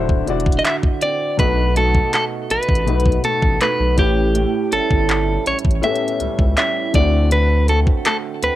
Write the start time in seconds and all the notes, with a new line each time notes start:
Already playing: D1 D3 D4 E4 F#4 C5
0.09 kick
0.26 E1 D3 D4 E4 F#4 D5, closed hi-hat
0.40 closed hi-hat
0.46 kick
0.52 closed hi-hat
0.59 D#5
0.65 E5, clap, closed hi-hat
0.83 kick
1.01 C4 D5, closed hi-hat
1.37 B1 B2 A3 D#4 F#4 A4 B4, kick, closed hi-hat
1.48 B4
1.76 A3 D#4 F#4 A4, closed hi-hat
1.94 kick
2.13 A3 A4, clap, closed hi-hat
2.50 A1 D#4 B4, closed hi-hat
2.63 closed hi-hat
2.69 A1, kick
2.75 closed hi-hat
2.85 B1 B2 A3 D#4 F#4 B4, closed hi-hat
3.00 closed hi-hat
3.06 kick
3.12 closed hi-hat
3.24 A3 A4, closed hi-hat
3.43 A1, kick
3.61 A3 D#4 F#4 B4, clap, closed hi-hat
3.80 B1
3.97 A1 A2 A3 C#4 G4 B4, kick, closed hi-hat
4.35 A2, closed hi-hat
4.72 G1 G3 C#4 E4 A4, closed hi-hat
4.91 G1, kick
5.09 G3, clap, closed hi-hat
5.46 A1 C#4 C#5, closed hi-hat
5.59 closed hi-hat
5.65 A1, kick
5.71 closed hi-hat
5.82 A2 A3 B3 G4 A4 E5, closed hi-hat
5.90 C#4
5.96 closed hi-hat
6.08 closed hi-hat
6.20 C#2 G3, closed hi-hat
6.39 C#2, kick
6.57 G3 C#4 E4 E5, clap, closed hi-hat
6.93 D2 D3 A3 C4 E4 D5, kick, closed hi-hat
6.97 F#4
7.31 D3 B4, closed hi-hat
7.68 A3 C4 F#4 A4, closed hi-hat
7.87 kick
8.05 A3 A4, clap, closed hi-hat
8.42 D2 C4 B4, closed hi-hat